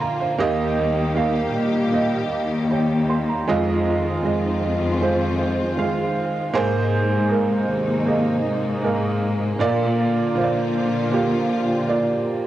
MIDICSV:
0, 0, Header, 1, 4, 480
1, 0, Start_track
1, 0, Key_signature, -4, "major"
1, 0, Tempo, 770218
1, 248, Time_signature, 4, 2, 24, 8
1, 3130, Tempo, 762389
1, 7818, End_track
2, 0, Start_track
2, 0, Title_t, "Upright piano"
2, 0, Program_c, 0, 0
2, 0, Control_c, 0, 64, 127
2, 0, Note_on_c, 0, 58, 76
2, 0, Note_on_c, 0, 65, 63
2, 0, Note_on_c, 0, 74, 96
2, 0, Note_on_c, 0, 77, 83
2, 0, Note_on_c, 0, 79, 48
2, 0, Note_on_c, 0, 84, 58
2, 6, Note_on_c, 0, 82, 65
2, 12, Note_off_c, 0, 77, 0
2, 12, Note_on_c, 0, 77, 52
2, 117, Note_off_c, 0, 77, 0
2, 121, Note_off_c, 0, 82, 0
2, 126, Note_on_c, 0, 77, 68
2, 129, Note_on_c, 0, 72, 51
2, 239, Note_off_c, 0, 58, 0
2, 239, Note_on_c, 0, 58, 109
2, 245, Note_on_c, 0, 51, 76
2, 246, Note_on_c, 0, 67, 104
2, 251, Note_on_c, 0, 75, 117
2, 256, Control_c, 0, 64, 0
2, 257, Note_off_c, 0, 74, 0
2, 257, Note_off_c, 0, 84, 0
2, 259, Note_off_c, 0, 79, 0
2, 260, Note_off_c, 0, 65, 0
2, 353, Note_off_c, 0, 77, 0
2, 355, Note_off_c, 0, 72, 0
2, 370, Control_c, 0, 64, 127
2, 695, Note_off_c, 0, 58, 0
2, 698, Note_off_c, 0, 67, 0
2, 701, Note_off_c, 0, 75, 0
2, 715, Note_on_c, 0, 58, 84
2, 721, Note_on_c, 0, 67, 74
2, 725, Note_on_c, 0, 77, 90
2, 936, Note_off_c, 0, 51, 0
2, 1175, Note_off_c, 0, 58, 0
2, 1178, Note_off_c, 0, 67, 0
2, 1180, Note_off_c, 0, 77, 0
2, 1197, Note_on_c, 0, 58, 76
2, 1201, Note_on_c, 0, 67, 60
2, 1207, Note_on_c, 0, 75, 85
2, 1661, Note_off_c, 0, 58, 0
2, 1663, Note_off_c, 0, 67, 0
2, 1666, Note_off_c, 0, 75, 0
2, 1687, Note_on_c, 0, 79, 56
2, 1693, Note_on_c, 0, 73, 52
2, 1918, Note_off_c, 0, 79, 0
2, 1921, Note_off_c, 0, 73, 0
2, 1929, Note_on_c, 0, 84, 63
2, 1931, Note_on_c, 0, 79, 48
2, 2045, Note_off_c, 0, 84, 0
2, 2046, Note_off_c, 0, 79, 0
2, 2051, Note_on_c, 0, 82, 63
2, 2054, Note_on_c, 0, 77, 47
2, 2167, Note_on_c, 0, 56, 106
2, 2173, Note_on_c, 0, 65, 105
2, 2177, Note_on_c, 0, 75, 115
2, 2179, Control_c, 0, 64, 0
2, 2281, Note_off_c, 0, 82, 0
2, 2282, Note_off_c, 0, 77, 0
2, 2303, Control_c, 0, 64, 127
2, 2626, Note_off_c, 0, 56, 0
2, 2629, Note_off_c, 0, 65, 0
2, 2631, Note_off_c, 0, 75, 0
2, 2642, Note_on_c, 0, 56, 84
2, 2648, Note_on_c, 0, 65, 67
2, 2652, Note_on_c, 0, 75, 83
2, 3102, Note_off_c, 0, 56, 0
2, 3105, Note_off_c, 0, 65, 0
2, 3107, Note_off_c, 0, 75, 0
2, 3121, Note_on_c, 0, 56, 70
2, 3127, Note_on_c, 0, 65, 70
2, 3131, Note_on_c, 0, 72, 81
2, 3584, Note_off_c, 0, 56, 0
2, 3587, Note_off_c, 0, 65, 0
2, 3589, Note_off_c, 0, 72, 0
2, 3602, Note_on_c, 0, 56, 74
2, 3608, Note_on_c, 0, 65, 67
2, 3612, Note_on_c, 0, 77, 93
2, 4063, Note_off_c, 0, 56, 0
2, 4066, Note_off_c, 0, 65, 0
2, 4069, Note_off_c, 0, 77, 0
2, 4082, Note_on_c, 0, 58, 117
2, 4088, Note_on_c, 0, 44, 76
2, 4089, Note_on_c, 0, 68, 106
2, 4093, Note_on_c, 0, 72, 127
2, 4101, Control_c, 0, 64, 0
2, 4220, Control_c, 0, 64, 127
2, 4543, Note_off_c, 0, 58, 0
2, 4546, Note_off_c, 0, 68, 0
2, 4548, Note_off_c, 0, 72, 0
2, 4563, Note_on_c, 0, 58, 83
2, 4569, Note_on_c, 0, 68, 72
2, 4573, Note_on_c, 0, 70, 85
2, 4784, Note_off_c, 0, 44, 0
2, 5023, Note_off_c, 0, 58, 0
2, 5027, Note_off_c, 0, 68, 0
2, 5028, Note_off_c, 0, 70, 0
2, 5045, Note_on_c, 0, 58, 80
2, 5052, Note_on_c, 0, 68, 69
2, 5056, Note_on_c, 0, 75, 82
2, 5506, Note_off_c, 0, 58, 0
2, 5509, Note_off_c, 0, 68, 0
2, 5512, Note_off_c, 0, 75, 0
2, 5524, Note_on_c, 0, 58, 72
2, 5530, Note_on_c, 0, 68, 73
2, 5535, Note_on_c, 0, 70, 82
2, 5985, Note_off_c, 0, 58, 0
2, 5987, Note_off_c, 0, 68, 0
2, 5990, Note_off_c, 0, 70, 0
2, 6006, Note_on_c, 0, 58, 104
2, 6012, Note_on_c, 0, 46, 80
2, 6012, Note_on_c, 0, 65, 107
2, 6018, Note_on_c, 0, 74, 126
2, 6022, Control_c, 0, 64, 0
2, 6134, Control_c, 0, 64, 127
2, 6464, Note_off_c, 0, 58, 0
2, 6466, Note_off_c, 0, 65, 0
2, 6469, Note_off_c, 0, 74, 0
2, 6487, Note_on_c, 0, 58, 85
2, 6493, Note_on_c, 0, 65, 83
2, 6497, Note_on_c, 0, 72, 81
2, 6534, Note_off_c, 0, 72, 0
2, 6540, Note_on_c, 0, 74, 97
2, 6703, Note_off_c, 0, 46, 0
2, 6943, Note_off_c, 0, 58, 0
2, 6946, Note_off_c, 0, 65, 0
2, 6966, Note_on_c, 0, 58, 83
2, 6969, Note_off_c, 0, 74, 0
2, 6971, Note_on_c, 0, 65, 80
2, 6977, Note_on_c, 0, 67, 93
2, 7423, Note_off_c, 0, 58, 0
2, 7426, Note_off_c, 0, 65, 0
2, 7429, Note_off_c, 0, 67, 0
2, 7446, Note_on_c, 0, 58, 79
2, 7452, Note_on_c, 0, 65, 70
2, 7458, Note_on_c, 0, 74, 91
2, 7818, Note_off_c, 0, 58, 0
2, 7818, Note_off_c, 0, 65, 0
2, 7818, Note_off_c, 0, 74, 0
2, 7818, End_track
3, 0, Start_track
3, 0, Title_t, "String section"
3, 0, Program_c, 1, 48
3, 0, Note_on_c, 1, 50, 70
3, 0, Note_on_c, 1, 53, 66
3, 0, Note_on_c, 1, 58, 67
3, 0, Note_on_c, 1, 65, 87
3, 228, Note_off_c, 1, 50, 0
3, 229, Note_off_c, 1, 53, 0
3, 229, Note_off_c, 1, 65, 0
3, 241, Note_on_c, 1, 55, 65
3, 242, Note_on_c, 1, 51, 75
3, 242, Note_on_c, 1, 67, 79
3, 2148, Note_off_c, 1, 58, 0
3, 2150, Note_off_c, 1, 55, 0
3, 2150, Note_off_c, 1, 67, 0
3, 2164, Note_on_c, 1, 60, 66
3, 2164, Note_on_c, 1, 65, 79
3, 2167, Note_on_c, 1, 56, 68
3, 4065, Note_off_c, 1, 51, 0
3, 4070, Note_off_c, 1, 60, 0
3, 4070, Note_off_c, 1, 65, 0
3, 4092, Note_on_c, 1, 58, 61
3, 4092, Note_on_c, 1, 63, 70
3, 4094, Note_on_c, 1, 48, 71
3, 5986, Note_off_c, 1, 56, 0
3, 5994, Note_off_c, 1, 48, 0
3, 5994, Note_off_c, 1, 63, 0
3, 6020, Note_on_c, 1, 53, 68
3, 6021, Note_on_c, 1, 50, 78
3, 6023, Note_on_c, 1, 65, 80
3, 7818, Note_off_c, 1, 50, 0
3, 7818, Note_off_c, 1, 53, 0
3, 7818, Note_off_c, 1, 58, 0
3, 7818, Note_off_c, 1, 65, 0
3, 7818, End_track
4, 0, Start_track
4, 0, Title_t, "Cello section"
4, 0, Program_c, 2, 48
4, 249, Note_on_c, 2, 39, 101
4, 937, Note_off_c, 2, 39, 0
4, 963, Note_on_c, 2, 46, 84
4, 1422, Note_off_c, 2, 46, 0
4, 1445, Note_on_c, 2, 39, 104
4, 2147, Note_off_c, 2, 39, 0
4, 2171, Note_on_c, 2, 41, 99
4, 2628, Note_off_c, 2, 41, 0
4, 2652, Note_on_c, 2, 41, 91
4, 3827, Note_off_c, 2, 41, 0
4, 4093, Note_on_c, 2, 44, 88
4, 4786, Note_off_c, 2, 44, 0
4, 4811, Note_on_c, 2, 39, 95
4, 5268, Note_off_c, 2, 39, 0
4, 5294, Note_on_c, 2, 44, 92
4, 5988, Note_off_c, 2, 44, 0
4, 6014, Note_on_c, 2, 46, 102
4, 6466, Note_off_c, 2, 46, 0
4, 6492, Note_on_c, 2, 46, 88
4, 7664, Note_off_c, 2, 46, 0
4, 7818, End_track
0, 0, End_of_file